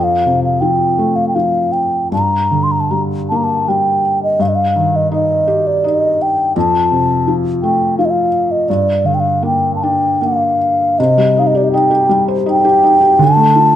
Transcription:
Already playing: F2
0.04 F5
0.26 C3
0.44 F5
0.61 F3 G5
0.99 A3
1.16 F5
1.28 G5
1.35 F3 F5
1.72 G5
2.12 G2 A#5
2.51 D3
2.63 C6
2.71 A#5
2.80 A5
2.91 G3 A#5
3.29 A#3 A5
3.36 A#5
3.44 A5
3.68 G3 G5
4.23 D#5
4.39 G2 F5
4.48 D#5
4.55 F5
4.76 D#3
4.96 D#5
5.12 D#4 D#5
5.47 G4
5.67 D5
5.84 D#4 D#5
6.22 G5
6.56 F2 A5
6.92 C3
7.28 F3
7.62 A3 G5
7.98 F3 F5
8.05 D#5
8.10 F5
8.51 D#5
8.69 G2 D5
9.04 D3 F5
9.14 G5
9.20 F5
9.43 A#3 G5
9.76 A5
9.83 D4 G5
10.21 A#3 F5
10.99 C3 D#5
11.18 G3
11.37 D#4 F5
11.47 D#5
11.55 G4 D5
11.64 D#5
11.73 D#4 G5
11.91 G4
12.09 G3
12.28 C5
12.46 D#4
12.50 G5
12.65 G4
12.83 D#4
13.01 G4
13.19 D3 A5
13.37 A3
13.56 F4

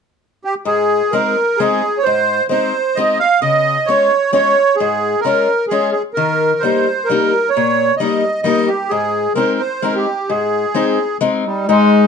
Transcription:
0.45 G4
0.65 G#2 G#4
1.12 G#3 C4 D#4 A#4
1.57 G#3 C4 G#4
1.61 D#4
1.98 C#5
2.03 G#2 C5
2.49 G#3 C4 D#4 C5
2.95 G#3 C4 D#4 D#5
3.19 F5
3.41 C#3 D#5
3.86 G#3 C#4 F4 C#5
4.33 G#3 C#4 F4 C#5
4.76 G#4
4.80 G#2
5.21 G#3 A#4
5.25 C#4 F4
5.68 G#3 G#4
5.72 C#4 F4
5.92 G#4
6.13 D#3 A#4
6.59 G3 C5
6.64 A#3 D#4
7.04 A#4
7.09 G3 A#3 D#4
7.50 C#5
7.57 A#2
7.97 G3 D#5
8.01 A#3 D#4
8.42 G3 A#3 D#4 D#5
8.67 G4
8.89 G#2 G#4
9.35 G#3 C4 D#4 A#4
9.60 C5
9.82 G#3 C4 D#4 A#4
9.95 G4
10.28 G#2 G#4
10.74 G#3 C4 D#4
11.21 G#3 C4 D#4
11.46 G3 D#4
11.67 G#2 G#3 D#4

